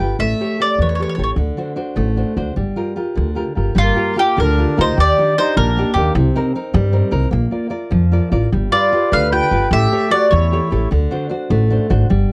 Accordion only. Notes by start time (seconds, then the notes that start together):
3.83 A#3
4.22 A#3
4.42 D4
4.81 D#4
4.97 G4
5.39 D#4
5.56 D4
5.96 A#3
8.72 F4
9.11 B4
9.30 B4
9.72 G4
10.13 F#4
10.34 E4